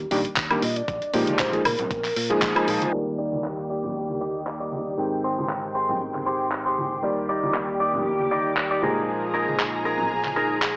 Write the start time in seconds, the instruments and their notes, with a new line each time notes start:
0.11 fingered electric bass A#1, electric grand piano D#3 G3 A#3 D4 G4, open hi-hat, cabasa
0.25 muted fingered electric bass stroke, closed hi-hat, cabasa
0.36 fingered electric bass D#2, kick, clap, closed hi-hat
0.50 electric grand piano D#3 G3 A#3 D4 G4, closed hi-hat, high woodblock
0.62 fingered electric bass A#2, soft synth lead D#5, open hi-hat, cabasa
0.76 soft synth lead D5, closed hi-hat, cabasa
0.88 fingered electric bass A#1, kick, closed hi-hat, cabasa
1.02 closed hi-hat
1.13 fingered electric bass A#2, electric grand piano F3 G#3 A#3 D#4 G4, open hi-hat, cabasa
1.27 closed hi-hat, high conga, cabasa
1.39 fingered electric bass A#1, soft synth lead C5, kick, clap, closed hi-hat, cabasa
1.52 electric grand piano F3 G#3 A#3 D#4 G#4, closed hi-hat
1.65 fingered electric bass A#2, soft synth lead A#4, open hi-hat, high conga, cabasa, high woodblock
1.79 closed hi-hat, low conga, cabasa
1.90 fingered electric bass A#1, kick, closed hi-hat, cabasa
2.04 clap, open hi-hat
2.16 fingered electric bass A#2, open hi-hat, cabasa
2.30 electric grand piano F3 G#3 A#3 D#4 G#4, muted fingered electric bass stroke, closed hi-hat
2.42 fingered electric bass A#1, kick, clap, closed hi-hat
2.55 electric grand piano F3 G#3 A#3 D#4 G#4, closed hi-hat, high woodblock
2.68 fingered electric bass A#2, open hi-hat, cabasa
2.81 closed hi-hat, high conga, cabasa
2.92 fingered electric bass D#2, electric grand piano D#3 G3 A#3 G4 D5, string machine G4 D6, cabasa
3.18 clean electric guitar D#4 G4 D5
3.33 high conga, cabasa
3.44 clap, cabasa
3.70 clean electric guitar D#4 G4 D5
3.83 low conga, cabasa
3.96 cabasa
4.09 high conga
4.21 clean electric guitar D#4 G4 D5, cabasa
4.36 cabasa
4.47 clap
4.60 clean electric guitar D#4 G4 D5
4.72 high conga, cabasa
4.86 cabasa
4.97 fingered electric bass G#1, electric grand piano D#3 G#3 C4 G5, string machine G5 C6, cabasa
5.24 clean electric guitar G4 G#4 C5, cabasa
5.38 high conga, cabasa
5.49 clap, cabasa
5.75 clean electric guitar G4 G#4 C5, cabasa
5.89 low conga, cabasa
6.01 cabasa
6.14 clap, high conga
6.26 clean electric guitar G4 G#4 C5, cabasa
6.41 cabasa
6.52 clap
6.66 clean electric guitar G4 G#4 C5
6.78 high conga, cabasa
6.92 cabasa
7.02 fingered electric bass D#2, electric grand piano D#3 G3 A#3 G4 D5, string machine G4 D6, cabasa
7.29 clean electric guitar D#4 G4 D5, cabasa
7.42 high conga, cabasa
7.54 clap, cabasa
7.80 clean electric guitar D#4 G4 D5, cabasa
7.94 low conga, cabasa
8.05 cabasa
8.19 high conga
8.31 clean electric guitar D#4 G4 D5, cabasa
8.44 cabasa
8.57 clap
8.71 clean electric guitar D#4 G4 D5
8.82 fingered electric bass A#1, electric grand piano F3 G#3 A#3 D#4 G#4, clean electric guitar D#4 G#4 A#4, string machine G#4 A#5, high conga, cabasa
8.97 cabasa
9.08 cabasa
9.33 clean electric guitar D#4 G#4 A#4, cabasa
9.47 high conga, cabasa
9.59 clap, cabasa
9.85 clean electric guitar D#4 G#4 A#4, cabasa
9.98 low conga, cabasa
10.11 cabasa
10.24 clap, high conga
10.36 clean electric guitar D#4 G#4 A#4, cabasa
10.50 cabasa
10.62 clap, cabasa